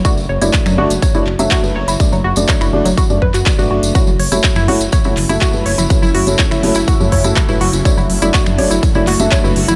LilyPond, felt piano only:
\new Staff \with { instrumentName = "Felt piano" } { \time 4/4 \key d \lydian \tempo 4 = 123 <a d' fis' d''>16 r8 <a d' fis' d''>8. <a d' fis' d''>16 r8 <a d' fis' d''>16 r16 <a d' fis' e''>8 <a d' fis' b'>16 r8 | <a d' fis' d''>16 r8 <a d' fis' d''>8. <a d' fis' d''>16 r8 <a d' fis' d''>16 r8. <a d' fis' d''>8. | <a e' fis' cis''>16 r8 <a e' fis' cis''>8. <a e' fis' cis''>16 r8 <a e' fis' cis''>16 r16 <a e' fis' e''>8 <a e' fis' b'>16 r8 | <a e' fis' cis''>16 r8 <a e' fis' cis''>8. <a e' fis' cis''>16 r8 <a e' fis' cis''>16 r16 <a e' fis' e''>8 <a e' fis' b'>16 r8 |
<a d' fis' d''>16 r8 <a d' fis' d''>8. <a d' fis' d''>16 r8 <a d' fis' d''>16 r16 <a d' fis' e''>8 <a d' fis' b'>16 r8 | }